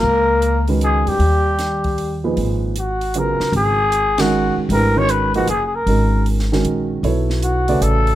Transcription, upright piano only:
X:1
M:3/4
L:1/8
Q:"Swing" 1/4=154
K:Dbdor
V:1 name="Upright piano"
z3 [E,A,DGc]3 | z4 z [B,,=F,EAc]- | [K:G#dor] [_B,,=F,_E_A_c]2 z2 [^C,^F,=B,^EG]2- | [C,F,B,EG] z2 [D,G,CFA]3 |
[=E,=A,=D=GB] [^D,^G,CF^A]2 [^E,^A,^D^GB] z2 | [D,G,CFA]3 [D,G,CFA]3 | [F,B,=E=Ac]3 [C,=A,FB=d]3 |]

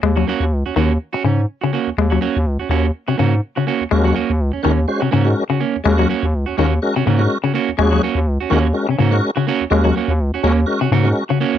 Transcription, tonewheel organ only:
X:1
M:4/4
L:1/16
Q:"Swing 16ths" 1/4=124
K:Ebm
V:1 name="Tonewheel organ"
z16 | z16 | [A,DGB]2 z4 [A,DGB] z [A,DG=c] z2 [A,DGB]2 z3 | [A,DGB]2 z4 [A,DGB] z [A,DGB] z2 [A,DGB]2 z3 |
[A,DGA]2 z4 [A,DGB] z [A,DGB] z2 [A,DGB]2 z3 | [A,DGB]2 z4 [A,DGB] z [A,DGB] z2 [A,DGB]2 z3 |]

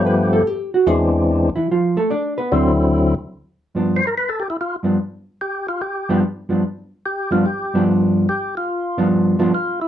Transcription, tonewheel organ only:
X:1
M:4/4
L:1/16
Q:"Swing" 1/4=146
K:Gmix
V:1 name="Tonewheel organ"
[G,,F,A,B,G]4 z4 [E,,E,^G,^B,D]6 z2 | z8 [D,,D,^F,CE]6 z2 | z6 c _B =B A G E F2 z2 | z4 G2 F2 G4 z4 |
z4 G2 F2 G4 z4 | G2 F6 z4 F2 E2 |]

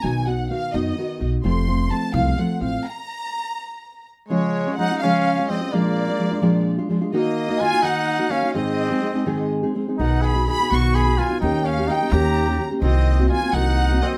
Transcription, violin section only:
X:1
M:6/8
L:1/8
Q:3/8=85
K:Fphr
V:1 name="Violin section"
a ^f =f ^d2 z | c'2 =a f g f | b4- b z | [K:Db] d2 g f2 e |
=d4 z2 | e2 a g2 f | e4 z2 | g _c' c' d' c' a |
=g f g b2 z | e2 a g2 e |]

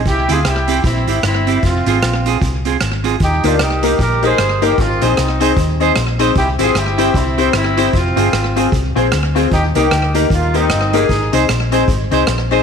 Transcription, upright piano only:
X:1
M:4/4
L:1/8
Q:"Swing" 1/4=152
K:Eb
V:1 name="Upright piano"
z8 | z8 | z [B,EGB] z [B,EGB] z [B,EGB] z [B,EGB] | z [CEAc] z [CEAc] z [CEAc] z [CEAc] |
z [C=EGc] z [CEGc] z [CEGc] z [CEGc] | z [CFAc] z [CFAc] z [CFAc] z [CFAc] | z [B,EGB] z [B,EGB] z [B,EGB] z [B,EGB] | z [CEAc] z [CEAc] z [CEAc] z [CEAc] |]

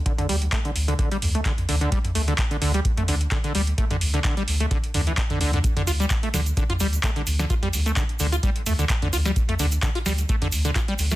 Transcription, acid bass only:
X:1
M:4/4
L:1/16
Q:"Swing 16ths" 1/4=129
K:Dm
V:1 name="Acid bass" clef=bass
D, D, G, z A, D, z D, D, G, z A, D, z D, D, | G, z A, D, z D, D, G, z A, D, z D, D, G, z | A, D, z D, D, G, z A, D, z D, E, D D, D, D, | z D, F G, z A, D, z D, F G, z A, D, z D, |
F G, z A, D, z D, F G, z A, D, z D, F G, | z A, D, z D, F G, z A, D, z D, F G, z A, |]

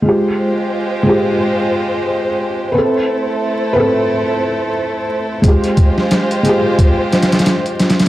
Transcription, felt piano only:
X:1
M:4/4
L:1/8
Q:"Swing 16ths" 1/4=89
K:Fm
V:1 name="Felt piano"
[A,FG]3 [A,FG]4- [A,FG] | [C=A=B]3 [CAB]4- [CAB] | [A,FG]3 [A,FG]4- [A,FG] |]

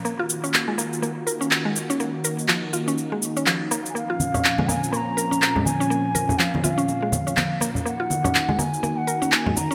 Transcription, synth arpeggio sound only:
X:1
M:4/4
L:1/16
Q:"Swing 16ths" 1/4=123
K:Ebdor
V:1 name="Synth arpeggio sound"
B, F z D z A, B, z B, z B D z A, z D | B, z B z F, z F D z A, z D F, z B, z | B, F z D z A, B, z B, z B D z A, z D | B, z B z F, z F D z A, z D F, z B, z |
B, F z D z A, B, z B, z B D z A, z D |]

